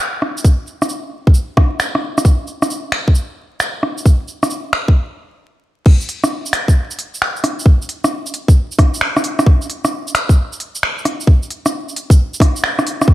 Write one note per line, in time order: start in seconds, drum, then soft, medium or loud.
0.22 cross-stick soft
0.37 shaker medium
0.44 kick loud
0.44 shaker soft
0.67 shaker soft
0.82 cross-stick medium
0.82 shaker medium
0.89 shaker medium
1.27 kick loud
1.34 shaker medium
1.57 kick loud
1.57 cross-stick medium
1.80 finger snap medium
1.80 shaker soft
1.95 cross-stick medium
2.18 cross-stick medium
2.18 shaker medium
2.25 kick loud
2.25 shaker medium
2.47 shaker soft
2.62 cross-stick medium
2.62 shaker medium
2.70 shaker medium
2.92 finger snap loud
3.08 kick loud
3.15 shaker medium
3.60 finger snap medium
3.60 shaker medium
3.83 cross-stick medium
3.98 shaker medium
4.06 kick loud
4.06 shaker medium
4.28 shaker soft
4.43 cross-stick medium
4.43 shaker medium
4.50 shaker medium
4.73 finger snap loud
4.88 kick loud
5.86 kick loud
5.86 crash loud
6.01 shaker soft
6.09 open hi-hat medium
6.24 cross-stick medium
6.24 shaker medium
6.46 shaker soft
6.53 finger snap loud
6.53 open hi-hat medium
6.68 kick loud
6.68 shaker medium
6.91 shaker soft
6.99 open hi-hat medium
7.14 shaker medium
7.22 finger snap loud
7.36 shaker soft
7.44 cross-stick medium
7.44 open hi-hat medium
7.59 shaker medium
7.66 kick loud
7.82 shaker soft
7.89 open hi-hat medium
8.04 cross-stick medium
8.04 shaker medium
8.26 shaker soft
8.34 open hi-hat medium
8.48 kick loud
8.48 shaker medium
8.72 shaker soft
8.79 kick loud
8.79 cross-stick medium
8.79 open hi-hat medium
8.94 shaker medium
9.01 finger snap loud
9.17 cross-stick medium
9.17 shaker soft
9.24 open hi-hat medium
9.39 cross-stick medium
9.39 shaker medium
9.46 kick loud
9.62 shaker soft
9.70 open hi-hat medium
9.85 cross-stick medium
9.85 shaker medium
10.07 shaker soft
10.15 finger snap loud
10.15 open hi-hat medium
10.29 kick loud
10.29 shaker medium
10.53 shaker soft
10.60 open hi-hat medium
10.75 shaker medium
10.83 finger snap loud
10.98 shaker soft
11.05 cross-stick medium
11.05 open hi-hat medium
11.20 shaker medium
11.27 kick loud
11.43 shaker soft
11.50 open hi-hat medium
11.66 cross-stick medium
11.66 shaker medium
11.89 shaker soft
11.96 open hi-hat medium
12.10 kick loud
12.10 open hi-hat soft
12.10 shaker medium
12.34 shaker soft
12.40 kick loud
12.40 cross-stick medium
12.40 open hi-hat medium
12.56 shaker medium
12.64 finger snap loud
12.79 cross-stick medium
12.79 shaker soft
12.87 open hi-hat medium
13.01 cross-stick medium
13.01 shaker medium
13.08 kick loud